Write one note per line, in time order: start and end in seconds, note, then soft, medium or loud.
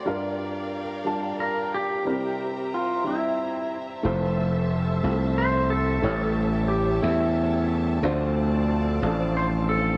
0.00 2.00 D5 medium
0.05 1.02 G2 medium
0.05 0.79 G3 medium
0.05 0.79 D4 medium
0.05 0.80 F4 medium
0.05 2.03 A#4 medium
0.05 0.80 A#4 medium
0.05 2.03 F5 soft
0.05 4.00 G5 soft
1.05 1.79 G3 medium
1.05 1.79 D4 medium
1.05 1.79 F4 medium
1.05 1.80 A5 medium
1.40 1.74 A#4 medium
1.74 2.76 G4 medium
2.04 3.01 C3 soft
2.04 2.79 G3 medium
2.04 2.79 C4 medium
2.04 2.79 E4 medium
2.04 2.80 A#4 medium
2.04 4.02 C5 soft
2.04 7.99 E5 soft
2.04 4.02 A#5 medium
2.74 3.07 F4 medium
3.04 3.78 G3 soft
3.04 3.78 C4 soft
3.04 3.78 E4 soft
3.04 3.77 E4 medium
3.04 3.79 G4 soft
4.03 5.00 F1 medium
4.03 6.02 F3 soft
4.03 4.77 A3 medium
4.03 6.02 C4 soft
4.03 4.78 E4 medium
4.03 4.78 F4 medium
4.03 8.00 A4 medium
4.03 4.79 C5 medium
4.03 6.03 C5 soft
4.03 8.00 E5 soft
4.03 9.97 A5 medium
5.03 6.00 C2 medium
5.03 5.77 A3 soft
5.03 5.78 E4 soft
5.03 5.78 F4 soft
5.03 5.11 G4 soft
5.12 5.81 A4 medium
5.38 5.72 C5 medium
5.70 6.66 A4 medium
6.02 6.99 A1 medium
6.02 6.99 A2 soft
6.02 8.02 G3 soft
6.02 6.76 A3 medium
6.02 8.02 C#4 soft
6.02 6.77 E4 medium
6.02 6.77 G4 medium
6.02 8.01 C#5 medium
6.02 6.78 C#5 medium
6.02 8.01 G5 soft
6.68 7.04 G4 medium
7.02 7.99 E2 medium
7.02 7.76 A3 soft
7.02 7.74 E4 medium
7.02 7.77 E4 soft
7.02 7.77 G4 soft
7.02 7.77 E5 soft
8.02 8.99 D2 medium
8.02 8.99 D3 medium
8.02 9.97 F3 soft
8.02 8.76 A3 medium
8.02 9.97 C4 soft
8.02 9.97 D4 soft
8.02 8.77 D4 medium
8.02 8.77 F4 medium
8.02 9.97 A4 medium
8.02 9.97 C5 soft
8.02 8.78 C5 medium
8.02 9.97 D5 soft
8.02 9.97 F5 soft
9.02 9.97 A1 medium
9.02 9.76 A3 medium
9.02 9.76 D4 medium
9.02 9.77 F4 medium
9.02 9.77 A4 medium
9.37 9.46 C5 medium
9.69 9.97 A4 medium